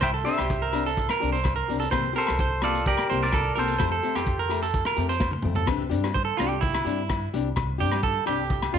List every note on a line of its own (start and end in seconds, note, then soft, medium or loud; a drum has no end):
0.01 0.21 C2 medium
0.01 0.13 C5 medium
0.01 0.10 E5 medium
0.01 0.09 G5 medium
0.01 kick medium
0.01 cross-stick medium
0.01 closed hi-hat soft
0.01 low agogo medium
0.14 0.37 A4 medium
0.24 0.41 C4 soft
0.24 0.40 D4 medium
0.24 0.40 G4 medium
0.24 1.64 C5 medium
0.24 1.63 E5 medium
0.24 closed hi-hat medium
0.38 1.05 C2 medium
0.38 0.61 G4 medium
0.38 cross-stick medium
0.38 closed hi-hat soft
0.38 low agogo medium
0.50 kick medium
0.50 closed hi-hat soft
0.62 0.85 A#4 medium
0.73 0.89 C4 soft
0.73 0.88 D4 soft
0.73 0.88 G4 medium
0.73 closed hi-hat medium
0.73 low agogo medium
0.86 1.08 A4 medium
0.86 closed hi-hat soft
0.97 kick medium
0.97 closed hi-hat soft
1.09 1.32 A#4 medium
1.09 cross-stick medium
1.09 low agogo medium
1.20 1.60 C2 medium
1.20 1.36 C4 soft
1.20 1.35 D4 soft
1.20 1.35 G4 medium
1.20 closed hi-hat soft
1.33 1.55 C5 medium
1.33 closed hi-hat soft
1.44 kick medium
1.44 cross-stick medium
1.44 closed hi-hat soft
1.44 low agogo medium
1.56 1.79 A#4 medium
1.68 1.88 C2 medium
1.68 1.83 C4 soft
1.68 1.83 D4 soft
1.68 1.82 G4 soft
1.68 closed hi-hat soft
1.80 1.91 A4 medium
1.80 closed hi-hat medium
1.91 2.11 C2 medium
1.91 2.06 E3 medium
1.91 2.06 A#3 medium
1.91 2.06 C4 medium
1.91 2.06 G4 medium
1.91 2.14 C5 medium
1.91 kick medium
1.91 cross-stick medium
1.91 closed hi-hat soft
1.91 low agogo medium
2.13 2.29 C4 soft
2.13 2.28 G4 medium
2.13 2.38 A#4 medium
2.13 closed hi-hat soft
2.18 2.61 A4 medium
2.18 2.64 C5 medium
2.27 2.94 C2 medium
2.27 cross-stick medium
2.27 closed hi-hat soft
2.27 low agogo medium
2.39 2.62 C5 medium
2.39 kick medium
2.39 closed hi-hat soft
2.62 2.77 A#3 soft
2.62 2.77 C4 soft
2.62 2.85 F4 medium
2.62 2.77 G4 soft
2.62 2.87 A4 medium
2.62 2.85 D5 medium
2.62 cross-stick medium
2.62 closed hi-hat soft
2.62 low agogo medium
2.74 closed hi-hat soft
2.86 3.20 G4 medium
2.86 3.21 A#4 medium
2.86 3.09 D5 medium
2.86 kick medium
2.86 closed hi-hat soft
2.97 cross-stick medium
2.97 low agogo medium
3.10 3.48 C2 loud
3.10 3.25 A#3 soft
3.10 3.25 C4 soft
3.10 3.24 G4 medium
3.10 3.32 C5 medium
3.10 closed hi-hat soft
3.22 3.55 A#4 medium
3.22 3.59 D5 medium
3.22 closed hi-hat soft
3.32 3.55 A4 medium
3.32 kick medium
3.32 cross-stick medium
3.32 closed hi-hat soft
3.32 low agogo medium
3.56 3.76 C2 medium
3.56 3.72 A#3 soft
3.56 3.71 C4 soft
3.56 3.71 G4 soft
3.56 5.18 A4 medium
3.56 3.78 A#4 medium
3.56 5.19 C5 medium
3.56 closed hi-hat soft
3.68 closed hi-hat medium
3.79 3.99 F2 medium
3.79 3.94 F3 medium
3.79 3.94 A3 medium
3.79 3.94 C4 medium
3.79 3.94 G4 medium
3.79 3.91 C5 medium
3.79 kick medium
3.79 cross-stick medium
3.79 closed hi-hat soft
3.79 low agogo medium
3.92 4.14 A4 medium
4.03 4.19 A3 soft
4.03 4.18 C4 soft
4.03 4.18 G4 medium
4.03 closed hi-hat soft
4.16 4.81 F2 medium
4.16 4.38 G4 medium
4.16 cross-stick medium
4.16 closed hi-hat soft
4.16 low agogo medium
4.26 kick medium
4.26 closed hi-hat soft
4.39 4.62 A#4 medium
4.49 4.65 A3 soft
4.49 4.64 G4 medium
4.49 closed hi-hat soft
4.49 low agogo medium
4.62 4.85 A4 medium
4.62 closed hi-hat soft
4.74 kick medium
4.74 closed hi-hat soft
4.85 5.09 A#4 medium
4.85 cross-stick medium
4.85 low agogo medium
4.96 5.35 F2 medium
4.96 5.12 A3 soft
4.96 5.12 C4 medium
4.96 5.11 G4 medium
4.96 closed hi-hat soft
5.09 5.32 C5 medium
5.09 closed hi-hat soft
5.20 kick medium
5.20 snare soft
5.20 low agogo medium
5.31 muted clean electric guitar stroke medium
5.31 high tom soft
5.42 5.64 F2 medium
5.42 5.59 A3 soft
5.42 5.58 C4 soft
5.42 mid tom medium
5.55 5.67 A4 medium
5.55 floor tom medium
5.65 5.92 C2 medium
5.65 5.81 E3 medium
5.65 5.82 C4 medium
5.65 5.82 D4 medium
5.65 5.82 G4 medium
5.65 kick medium
5.65 cross-stick medium
5.65 low agogo medium
5.89 6.29 G2 medium
5.89 6.06 C4 medium
5.89 6.05 D4 medium
5.89 6.05 G4 medium
5.89 closed hi-hat medium
6.04 cross-stick medium
6.04 low agogo medium
6.14 6.24 C5 medium
6.14 kick medium
6.25 6.37 A4 medium
6.37 6.76 C2 medium
6.37 6.54 C4 soft
6.37 6.54 D4 soft
6.37 6.49 F4 medium
6.37 6.53 G4 soft
6.37 cross-stick medium
6.37 closed hi-hat soft
6.37 low agogo medium
6.49 6.61 G4 loud
6.61 7.28 E4 medium
6.61 kick medium
6.74 cross-stick medium
6.74 low agogo medium
6.84 7.23 G2 medium
6.84 7.01 C4 soft
6.84 7.00 D4 soft
6.84 7.00 G4 soft
6.84 closed hi-hat soft
7.09 kick medium
7.09 cross-stick medium
7.09 low agogo medium
7.34 7.52 C2 loud
7.34 7.48 C4 soft
7.34 7.48 D4 soft
7.34 7.48 G4 medium
7.34 closed hi-hat soft
7.56 7.82 C2 medium
7.56 kick medium
7.56 cross-stick medium
7.56 low agogo medium
7.78 8.18 G2 medium
7.78 7.95 C4 soft
7.78 7.94 D4 medium
7.78 7.93 G4 medium
7.78 8.03 G4 medium
7.78 closed hi-hat soft
7.92 cross-stick medium
7.92 low agogo medium
8.03 8.26 A4 loud
8.03 kick medium
8.26 8.65 C2 medium
8.26 8.42 C4 soft
8.26 8.41 D4 soft
8.26 8.41 G4 medium
8.26 8.71 G4 medium
8.26 closed hi-hat soft
8.26 low agogo medium
8.50 kick medium
8.62 cross-stick medium
8.62 low agogo medium
8.73 8.79 G2 medium
8.73 8.79 C4 soft
8.73 8.79 D4 soft
8.73 8.79 F4 loud
8.73 8.79 G4 medium
8.73 closed hi-hat soft